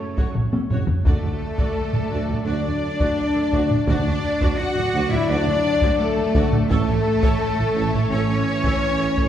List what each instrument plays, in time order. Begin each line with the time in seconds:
Already playing: trombone section F#3 C#4, french horn section A3, cello section A3, flute section A4, violin section A4, trumpet C#5
0.17 double bass section F#2, viola section F#4 C#5, taiko
0.35 taiko low-mid
0.53 double bass section F#2, viola section C#4 A4, taiko high
0.70 tuba F#1, double bass section F#2, viola section F#4 C#5, taiko low-mid
0.88 taiko low
1.05 tuba D2, double bass section D2, trombone section F#3 A3, french horn section A3, cello section A3, viola section F#4 D5, violin section A4, flute section A4, trumpet D5, taiko
1.24 double bass section D2, viola section F#4 D5
1.58 double bass section D2, viola section F#4 D5, taiko
1.93 double bass section D2, viola section D4 A4, taiko low-mid
2.11 tuba D2, double bass section D2, viola section F#4 D5
2.29 double bass section D2, viola section F#4 D5, taiko low-mid
2.46 tuba D2, double bass section D2, cello section D4, french horn section D4, viola section F#4 D5, flute section D5, violin section D5
2.64 double bass section D2, viola section F#4 D5
2.99 double bass section D2, viola section F#4 D5, taiko
3.34 double bass section D2, viola section D4 A4
3.52 tuba D2, double bass section D2, viola section F#4 D5, taiko
3.70 taiko low-mid
3.88 tuba D2, double bass section D2, trombone section F#3 A3, cello section D4, french horn section D4, viola section F#4 D5, trumpet D5, violin section D5, flute section D5, taiko
4.06 double bass section D2, viola section F#4 D5
4.41 double bass section D2, viola section F#4 D5, taiko
4.58 cello section F#4, french horn section F#4, violin section F#5, flute section F#5
4.76 double bass section D2, viola section D4 A4, taiko low-mid
4.94 tuba D2, double bass section D2, viola section F#4 D5
5.10 double bass section D2, cello section E4, french horn section E4, viola section F#4 D5, violin section E5, flute section E5, taiko low-mid
5.28 tuba D2, double bass section D2, cello section D4, french horn section D4, viola section F#4 D5, flute section D5, violin section D5
5.47 double bass section D2, viola section F#4 D5
5.81 double bass section D2, viola section F#4 D5, taiko
5.99 cello section A3, french horn section A3, violin section A4, flute section A4
6.17 double bass section D2, viola section D4 A4
6.34 tuba D2, double bass section D2, viola section F#4 D5, taiko
6.52 taiko low-mid
6.69 tuba A1, double bass section A1, trombone section E3, french horn section A3, cello section A3, viola section A4 C#5, violin section A4, flute section A4, trumpet C#5, taiko
6.88 double bass section A1, viola section A4 C#5
7.23 double bass section A1, viola section A4 C#5, taiko
7.58 double bass section A1, viola section E4 A4, taiko low-mid
7.75 tuba A1, double bass section A1, viola section A4 C#5
7.93 double bass section A1, viola section A4 C#5, taiko low-mid
8.10 tuba A1, double bass section A1, french horn section C#4, cello section C#4, viola section A4 C#5, flute section C#5, violin section C#5
8.29 double bass section A1, viola section A4 C#5
8.64 double bass section A1, viola section A4 C#5, taiko
8.98 double bass section A1, viola section E4 A4
9.16 tuba A1, double bass section A1, viola section A4 C#5, taiko